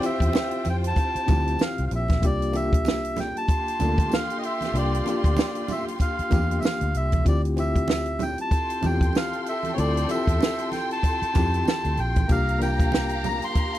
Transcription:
Already playing: tine electric piano D4 E4 F4 G4, string section F4 C5 G5
0.00 tine electric piano C4 E4 F4 G4, closed hi-hat, tambourine, muted conga
0.06 melodica E5
0.20 fingered electric bass E2, kick, closed hi-hat
0.33 snare, tambourine, high conga
0.51 closed hi-hat
0.65 fingered electric bass F2, closed hi-hat, tambourine, muted conga
0.70 melodica G5
0.84 melodica A5, closed hi-hat
0.96 kick, closed hi-hat, tambourine, muted conga
1.15 muted fingered electric bass stroke, closed hi-hat
1.26 fingered electric bass D2, tine electric piano C4 E4 F4 G4, kick, closed hi-hat, tambourine, muted conga, low conga
1.48 closed hi-hat
1.58 snare, tambourine, high conga
1.63 melodica F5
1.78 fingered electric bass C2, closed hi-hat
1.87 melodica F5
1.91 fingered electric bass A#1, closed hi-hat, tambourine
1.95 melodica E5
2.08 kick, snare, closed hi-hat, high conga
2.21 fingered electric bass C2, tine electric piano A#3 D4 F4 G4, kick, closed hi-hat, tambourine
2.26 melodica D5
2.42 closed hi-hat
2.52 tine electric piano A#3 D4 F4 G4, melodica E5, closed hi-hat, tambourine, muted conga
2.73 kick, closed hi-hat
2.85 snare, tambourine, high conga
3.05 closed hi-hat
3.16 melodica G5, snare, closed hi-hat, tambourine, muted conga, low conga
3.37 melodica A5, closed hi-hat
3.48 string section F4 G4 C6, kick, closed hi-hat, tambourine, muted conga
3.68 closed hi-hat
3.79 fingered electric bass D2, tine electric piano A#3 D4 F4 A4, closed hi-hat, tambourine, muted conga, low conga
3.98 kick, closed hi-hat
4.09 snare, tambourine, high conga
4.14 melodica F5
4.30 closed hi-hat
4.38 melodica D#5
4.43 melodica E5, closed hi-hat
4.61 snare, closed hi-hat, high conga
4.73 fingered electric bass C2, tine electric piano A#3 D4 F4 G4, closed hi-hat, tambourine
4.78 melodica D5
4.94 closed hi-hat
5.05 tine electric piano A#3 D4 F4 G4, closed hi-hat, tambourine, muted conga
5.09 melodica D5
5.24 fingered electric bass D2, kick, closed hi-hat
5.37 snare, tambourine, high conga
5.55 closed hi-hat
5.68 melodica E5, closed hi-hat, tambourine, muted conga, low conga
5.88 closed hi-hat
5.99 melodica F5, kick, closed hi-hat, tambourine, muted conga
6.19 muted fingered electric bass stroke, closed hi-hat
6.30 fingered electric bass E2, tine electric piano A#3 D4 F4 G4, kick, closed hi-hat, tambourine, muted conga, low conga
6.51 closed hi-hat
6.59 melodica E5, tambourine, high conga
6.65 melodica F5, snare
6.81 fingered electric bass D2, closed hi-hat
6.94 fingered electric bass C2, melodica E5, closed hi-hat, tambourine
7.12 kick, closed hi-hat, high conga
7.25 fingered electric bass D2, tine electric piano C4 E4 F4 G4, melodica D5, kick, closed hi-hat, tambourine
7.45 closed hi-hat
7.56 tine electric piano C4 E4 F4 G4, melodica E5, closed hi-hat, tambourine, muted conga
7.76 kick, closed hi-hat
7.88 snare, tambourine, high conga
8.06 closed hi-hat
8.19 melodica G5, closed hi-hat, tambourine, muted conga, low conga
8.38 melodica A5, closed hi-hat
8.51 string section A4 G5 C6, kick, closed hi-hat, tambourine
8.70 closed hi-hat
8.81 fingered electric bass E2, tine electric piano C4 E4 F4 G4, closed hi-hat, tambourine, muted conga, low conga
8.86 melodica G5
9.01 kick, closed hi-hat
9.13 snare, tambourine, high conga
9.17 melodica F5
9.33 closed hi-hat
9.43 melodica F5, closed hi-hat
9.47 melodica E5, tambourine
9.63 closed hi-hat, high conga
9.74 tine electric piano C4 E4, melodica C#5
9.78 fingered electric bass D2, tine electric piano F4 A4, melodica D5, closed hi-hat, tambourine
9.97 closed hi-hat
10.07 tine electric piano C4 E4 F4 G4, melodica E5, closed hi-hat, tambourine, muted conga
10.27 fingered electric bass E2, kick, closed hi-hat
10.41 snare, tambourine, high conga
10.59 closed hi-hat
10.72 melodica G5, snare, closed hi-hat, tambourine, muted conga
10.91 melodica A5, closed hi-hat
11.03 kick, closed hi-hat, tambourine
11.22 muted fingered electric bass stroke, closed hi-hat
11.34 fingered electric bass F2, tine electric piano C4 E4 F4 G4, kick, closed hi-hat, tambourine, muted conga, low conga
11.54 closed hi-hat
11.65 melodica A5, snare, tambourine, high conga
11.84 fingered electric bass D2, closed hi-hat
11.97 fingered electric bass A#1, melodica G5, closed hi-hat
12.16 kick, closed hi-hat, high conga
12.28 fingered electric bass C2, tine electric piano A#3 D4 F4 G4, string section G4 F5 A#5, melodica F5, kick, closed hi-hat, tambourine
12.49 closed hi-hat
12.59 tine electric piano A#3 D4 F4 A#4, melodica G5, closed hi-hat, tambourine, muted conga
12.80 kick, closed hi-hat
12.92 snare, tambourine, high conga
13.09 closed hi-hat
13.24 melodica A#5, closed hi-hat, tambourine, muted conga, low conga
13.42 melodica C6, closed hi-hat
13.55 kick, closed hi-hat, muted conga
13.75 closed hi-hat

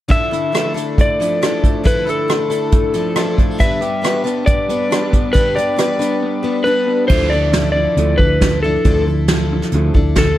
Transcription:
0.08 twelve-string acoustic guitar D3 F3 D4 E4 A4, clean electric guitar D3, electric slide guitar E5, kick, closed hi-hat
0.31 twelve-string acoustic guitar D4 E4 A4, clean electric guitar E4, closed hi-hat
0.52 twelve-string acoustic guitar F3 D4 E4 A4, clean electric guitar A3, cross-stick, closed hi-hat
0.74 clean electric guitar D4, twelve-string acoustic guitar D4 E4 A4, closed hi-hat
0.98 clean electric guitar A3, electric slide guitar D5, kick, closed hi-hat
1.20 clean electric guitar F3, twelve-string acoustic guitar D4 E4 A4, closed hi-hat
1.42 twelve-string acoustic guitar F3 D4 E4 A4, clean electric guitar D4, cross-stick, closed hi-hat
1.63 clean electric guitar A3, kick, closed hi-hat
1.84 twelve-string acoustic guitar D3 F3 D4 E4 A4, clean electric guitar D3, electric slide guitar B4, kick, closed hi-hat
2.05 twelve-string acoustic guitar D4 E4 A4, clean electric guitar E4, closed hi-hat
2.09 electric slide guitar A4
2.28 twelve-string acoustic guitar F3 D4 E4 A4, clean electric guitar A3, cross-stick, closed hi-hat
2.50 clean electric guitar D4, twelve-string acoustic guitar D4 E4 A4, closed hi-hat
2.72 clean electric guitar A3, kick, closed hi-hat
2.93 clean electric guitar F3, twelve-string acoustic guitar D4 E4 A4, closed hi-hat
3.15 twelve-string acoustic guitar F3 D4 E4 A4, clean electric guitar D4, cross-stick, closed hi-hat
3.37 clean electric guitar A3, kick, closed hi-hat
3.58 twelve-string acoustic guitar G2 D3 G3 B3 D4 B4, clean electric guitar G2, electric slide guitar E5, kick, closed hi-hat
3.81 twelve-string acoustic guitar G3 B3 D4 B4, clean electric guitar G4, closed hi-hat
4.02 twelve-string acoustic guitar G3 B3 D4 B4, clean electric guitar B3, cross-stick, closed hi-hat
4.24 twelve-string acoustic guitar G3 B3 D4 B4, clean electric guitar D4, closed hi-hat
4.46 clean electric guitar B3, electric slide guitar D5, kick, closed hi-hat
4.68 clean electric guitar G3, twelve-string acoustic guitar G3 B3 D4 B4, closed hi-hat
4.90 twelve-string acoustic guitar G3 B3 D4 B4, clean electric guitar D4, cross-stick, closed hi-hat
5.11 clean electric guitar B3, kick, closed hi-hat
5.33 twelve-string acoustic guitar G2 D3 G3 B3 D4 B4, clean electric guitar G2, electric slide guitar B4, kick, closed hi-hat
5.55 twelve-string acoustic guitar G3 B3 D4 B4, clean electric guitar G4, electric slide guitar D5, closed hi-hat
5.76 twelve-string acoustic guitar G3 B3 D4 B4, clean electric guitar B3, cross-stick, closed hi-hat
5.99 twelve-string acoustic guitar G3 B3 D4 B4, clean electric guitar D4, closed hi-hat
6.22 clean electric guitar B3
6.43 clean electric guitar G3, twelve-string acoustic guitar G3 B3 D4 B4
6.64 twelve-string acoustic guitar G3 B3 D4 B4, clean electric guitar D4, electric slide guitar B4
6.87 clean electric guitar B3
7.08 fingered electric bass D2, clean electric guitar D3 F3 A3, twelve-string acoustic guitar D3 F3 D4 E4 A4, electric slide guitar C5, kick, crash
7.30 clean electric guitar D3 F3, twelve-string acoustic guitar A4, electric slide guitar D5
7.34 twelve-string acoustic guitar D4 E4
7.52 clean electric guitar D3 F3, twelve-string acoustic guitar F3 D4 E4, snare, closed hi-hat
7.56 twelve-string acoustic guitar A4
7.72 electric slide guitar D5
7.76 clean electric guitar D3 F3
7.97 fingered electric bass D2, clean electric guitar D3 F3 A3, closed hi-hat
8.18 fingered electric bass D2, clean electric guitar D3 F3, twelve-string acoustic guitar D4 E4 A4, electric slide guitar B4, kick
8.41 clean electric guitar D3 F3, twelve-string acoustic guitar F3 D4 E4, kick, snare, closed hi-hat
8.45 twelve-string acoustic guitar A4
8.63 clean electric guitar D3 F3, twelve-string acoustic guitar D4 E4 A4, electric slide guitar A4
8.84 fingered electric bass D2, clean electric guitar D3 F3 A3, twelve-string acoustic guitar D3 F3 D4 E4 A4, kick, closed hi-hat
9.07 clean electric guitar D3 F3, twelve-string acoustic guitar D4 E4 A4
9.28 clean electric guitar D3 F3, twelve-string acoustic guitar F3 D4 E4, snare, closed hi-hat
9.32 twelve-string acoustic guitar A4
9.53 clean electric guitar D3 F3
9.62 snare
9.72 fingered electric bass D2, clean electric guitar D3 F3 A3, closed hi-hat
9.94 fingered electric bass D2, clean electric guitar D3 F3, twelve-string acoustic guitar D4 E4 A4, kick
10.15 clean electric guitar D3, twelve-string acoustic guitar F3 D4 E4, electric slide guitar A4, kick, snare, closed hi-hat
10.20 clean electric guitar F3, twelve-string acoustic guitar A4

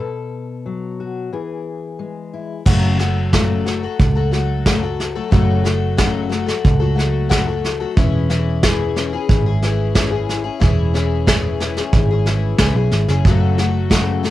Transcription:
0.00 steel-string acoustic guitar B2 A4
0.66 steel-string acoustic guitar F#3
1.00 steel-string acoustic guitar F#4
1.33 steel-string acoustic guitar E3 G#4
1.99 steel-string acoustic guitar G#3
2.33 steel-string acoustic guitar E4
2.66 picked electric bass F#1, twelve-string acoustic guitar F#2 C#3 F#3 A3 F#4 A4, kick, snare, crash
2.99 twelve-string acoustic guitar F#3 A3 F#4 A4, snare
3.33 twelve-string acoustic guitar F#2 C#3 F#3 A3 F#4 A4, kick, snare
3.66 twelve-string acoustic guitar F#3 A3 F#4 A4, snare
3.83 twelve-string acoustic guitar F#3 A3 F#4 A4
4.00 picked electric bass C#2, kick, snare
4.15 twelve-string acoustic guitar F#3 A3 F#4 A4
4.31 twelve-string acoustic guitar F#3 A3 F#4 A4, snare
4.66 twelve-string acoustic guitar F#2 C#3 F#3 A3 F#4 A4, kick, snare
4.82 twelve-string acoustic guitar F#3 A3 F#4 A4
5.00 snare
5.16 twelve-string acoustic guitar F#3 A3 F#4 A4
5.31 picked electric bass F#1, twelve-string acoustic guitar F#2 C#3 F#3 A3 F#4 A4, kick, snare
5.64 twelve-string acoustic guitar F#3 A3 F#4 A4, snare
5.97 twelve-string acoustic guitar F#2 C#3 F#3 A3 F#4 A4, kick, snare
6.29 twelve-string acoustic guitar F#3 A3 F#4 A4, snare
6.46 twelve-string acoustic guitar F#3 A3 F#4 A4, snare
6.65 picked electric bass C#2, kick, snare
6.80 twelve-string acoustic guitar F#3 A3 F#4 A4
6.95 twelve-string acoustic guitar F#3 A3 F#4 A4, snare
7.29 twelve-string acoustic guitar F#2 C#3 F#3 A3 F#4 A4, kick, snare
7.47 twelve-string acoustic guitar F#3 A3 F#4 A4
7.64 snare
7.80 twelve-string acoustic guitar F#3 A3 F#4 A4
7.97 picked electric bass E1, twelve-string acoustic guitar E3 C#4 E4 G#4, kick, snare
8.29 twelve-string acoustic guitar E3 C#4 E4 G#4, snare
8.63 twelve-string acoustic guitar E3 C#4 E4 G#4, kick, snare
8.96 twelve-string acoustic guitar E3 C#4 E4 G#4, snare
9.13 twelve-string acoustic guitar C#4 E4 G#4
9.29 picked electric bass G#1, kick, snare
9.46 twelve-string acoustic guitar C#4 E4 G#4
9.62 twelve-string acoustic guitar E3 C#4 E4 G#4, snare
9.95 twelve-string acoustic guitar E3 C#4 E4 G#4, kick, snare
10.11 twelve-string acoustic guitar C#4 E4 G#4
10.29 snare
10.44 twelve-string acoustic guitar C#4 E4 G#4
10.60 picked electric bass E1, twelve-string acoustic guitar E3 C#4 E4 G#4, kick, snare
10.94 twelve-string acoustic guitar E3 C#4 E4 G#4, snare
11.27 twelve-string acoustic guitar E3 C#4 E4 G#4, kick, snare
11.60 twelve-string acoustic guitar E3 C#4 E4 G#4, snare
11.77 twelve-string acoustic guitar C#4 E4 G#4, snare
11.93 picked electric bass G#1, kick, snare
12.11 twelve-string acoustic guitar C#4 E4 G#4
12.26 twelve-string acoustic guitar E3 C#4 E4 G#4, snare
12.58 picked electric bass C#2, twelve-string acoustic guitar E3 C#4 E4 G#4, kick, snare
12.75 picked electric bass B1, twelve-string acoustic guitar C#4 E4 G#4
12.91 picked electric bass G#1, snare
13.08 picked electric bass F#1, twelve-string acoustic guitar C#4 E4 G#4, snare
13.25 picked electric bass F#1, twelve-string acoustic guitar F#2 C#3 F#3 A3 F#4 A4, kick, snare
13.58 twelve-string acoustic guitar F#3 A3 F#4 A4, snare
13.90 twelve-string acoustic guitar F#2 C#3 F#3 A3 F#4 A4, kick, snare
14.23 twelve-string acoustic guitar F#3 A3 F#4 A4, snare

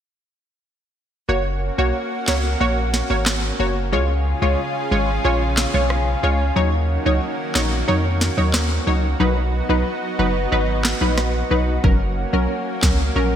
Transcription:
1.29 sub bass F#1, synth stab A#3 F#4 C#5, analog synth pad A#3 C#4 F#4
1.78 sub bass B1, synth stab A#3 F#4 C#5
2.27 sub bass C#2, synth stab A#3 F#4 C#5, snare, clap
2.60 sub bass A#1, synth stab A#3 F#4 C#5
2.94 snare
3.10 sub bass G#1, synth stab A#3 F#4 C#5
3.25 cross-stick, snare, clap
3.59 sub bass F#1, synth stab A#3 F#4 C#5
3.92 sub bass C#2, analog synth pad C#3 F4 G#4, synth stab G#3 F4 C#5
4.42 sub bass C#2, synth stab G#3 F4 C#5
4.91 sub bass G#1, synth stab G#3 F4 C#5
5.24 sub bass A#1, synth stab G#3 F4 C#5
5.57 snare, clap
5.74 sub bass B1, synth stab G#3 F4 C#5
5.90 cross-stick
6.23 sub bass C#2, synth stab G#3 F4 C#5
6.56 sub bass D#2, analog synth pad D#3 A#3 F#4, synth stab F#3 D#4 C#5
7.06 sub bass C#2, synth stab F#3 D#4 C#5
7.55 sub bass A#1, synth stab F#3 D#4 C#5, snare, clap
7.88 sub bass F2, synth stab F#3 D#4 C#5
8.21 snare
8.37 sub bass D#2, synth stab F#3 D#4 C#5
8.53 cross-stick, snare, clap
8.87 sub bass C#2, synth stab F#3 D#4 C#5
9.20 sub bass B1, synth stab F#3 D#4 B4, analog synth pad B3 D#4
9.69 sub bass B1, synth stab F#3 D#4 B4
10.19 sub bass F#1, synth stab F#3 D#4 B4
10.52 sub bass G#1, synth stab F#3 D#4 B4
10.84 snare, clap
11.01 sub bass A#1, synth stab F#3 D#4 B4
11.18 cross-stick, snare
11.51 sub bass B1, synth stab F#3 D#4 B4
11.84 sub bass F#1, synth stab F#3 C#4 A#4, analog synth pad A#3 C#4, kick
12.33 sub bass B1, synth stab F#3 C#4 A#4
12.82 sub bass C#2, synth stab F#3 C#4 A#4, kick, snare, clap
13.15 sub bass A#1, synth stab F#3 C#4 A#4

